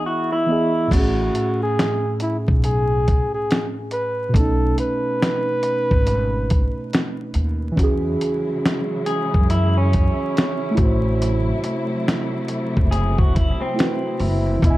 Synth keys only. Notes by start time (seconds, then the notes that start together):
Already playing: E3 B3 G#4 D#5
0.46 E3 B3 D#5
0.52 G#4
0.87 A2 A3
0.95 C#4 G#4
4.29 B2 A3
4.36 C#4 D#4
7.72 E3
7.76 C#4 F#4
7.83 G#4
10.71 A3 E4
10.78 F#4
10.82 C5
13.74 A3 E4 F#4
13.79 B4
14.59 E3 B3
14.66 D#5 G#5